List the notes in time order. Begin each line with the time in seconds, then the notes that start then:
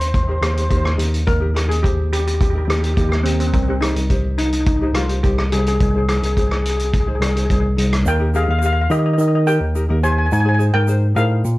Already playing: D#2
0.01 C5, closed hi-hat
0.08 C5
0.14 C5, kick, closed hi-hat
0.23 D#4 C5
0.28 G4 A#4 C5
0.38 D#2 D#4 C5
0.42 G4 A#4, cross-stick, closed hi-hat
0.47 C5
0.54 D#4 G4 A#4 C5, closed hi-hat
0.62 C5
0.69 D#2 D#4 G4 A#4 C5, kick, closed hi-hat
0.77 C5
0.85 C5, cross-stick
0.97 D#2 D#4 G4 A#4, closed hi-hat
1.14 closed hi-hat
1.27 D#2 A#4, kick, closed hi-hat
1.40 D#4 G4 A#4
1.54 D#4 G4 A#4, cross-stick, closed hi-hat
1.68 D#2 G#4, closed hi-hat
1.82 D#4 G4 C5, kick, closed hi-hat
2.13 G4, closed hi-hat
2.20 G4
2.27 G4, closed hi-hat
2.34 G4
2.41 G4, kick, closed hi-hat
2.50 D#4 G4
2.54 G4 A#4
2.65 D#2 D#4 G4
2.69 G4 A#4, cross-stick, closed hi-hat
2.80 D#4 G4 A#4, closed hi-hat
2.87 G4
2.94 D#2 D#4 G4, kick, closed hi-hat
2.98 G4 A#4
3.09 G4, cross-stick
3.23 D#2 C4 D#4 G4 A#4, closed hi-hat
3.32 C4
3.40 C4, closed hi-hat
3.47 C4
3.54 C2 C4, kick, closed hi-hat
3.63 C4
3.67 C4 D#4 G4 C5
3.81 D#4 G4 C5, cross-stick, closed hi-hat
3.96 C2, closed hi-hat
4.09 D#4 G4 C5, kick, closed hi-hat
4.38 D#4, closed hi-hat
4.46 D#4
4.53 D#4, closed hi-hat
4.61 D#4
4.66 D#4, kick, closed hi-hat
4.76 D#4
4.81 D#4 G4 C5
4.94 C2 D#4 F4 G4 C5, cross-stick, closed hi-hat
5.08 D#4 G4 C5, closed hi-hat
5.23 C2 D#4 G4 C5, kick, closed hi-hat
5.38 cross-stick
5.51 C2 D#4 G4 G#4 C5, closed hi-hat
5.59 G#4
5.66 G#4, closed hi-hat
5.75 G#4
5.80 C2 G#4, kick, closed hi-hat
5.90 D#4 G#4
5.95 G#4 C5
6.08 D#4 G#4 C5, cross-stick, closed hi-hat
6.17 G#4
6.23 C2 G#4, closed hi-hat
6.32 D#4 G#4
6.37 G#4 C5, kick, closed hi-hat
6.47 G#4
6.51 G#4, cross-stick
6.63 G#4, closed hi-hat
6.70 G#4
6.77 G#4, closed hi-hat
6.85 G#4
6.92 G#4, kick, closed hi-hat
7.00 G#4
7.07 D#4 G#4 C5
7.15 G#4
7.20 C2 D#4 G#4 D5, cross-stick, closed hi-hat
7.29 G#4
7.35 D#4 G#4 C5, closed hi-hat
7.45 D#4 G#4
7.50 C2 G#4 C5, kick, closed hi-hat
7.60 G#4
7.77 C2 D#4 G#4 C5, closed hi-hat
7.93 cross-stick, closed hi-hat
8.06 D#2 A#4 G5, shaker
8.19 D#4 G4 A#4
8.34 D#4 G4 G#4 A#4 F5, shaker
8.44 F5
8.48 D#2 F5
8.59 D#4 G4 F5, shaker
8.63 A#4 F5
8.73 F5
8.81 F5
8.90 D#3 D#4 G4 A#4 D#5, shaker
8.99 D#5
9.06 D#5
9.14 D#5
9.18 D#3 D#5, shaker
9.28 D#5
9.35 D#5
9.46 D#4 G4 A#4 G5, shaker
9.61 D#2
9.75 D#4 G4 A#4, shaker
9.89 D#2 D#4 G4 A#4
10.03 D#4 G4 A#4 C5 G#5, shaker
10.12 G#5
10.19 G#5
10.26 G#5
10.32 G#2 G#5, shaker
10.41 G#5
10.45 D#4 G#4 C5
10.49 G#5
10.55 D#4 G#5
10.59 G#4 C5, shaker
10.74 G#2 A#4 G5
10.88 D#4 G#4 C5, shaker
11.15 A2 D#4 G#4 A#4 C5 F5, shaker
11.45 A#2, shaker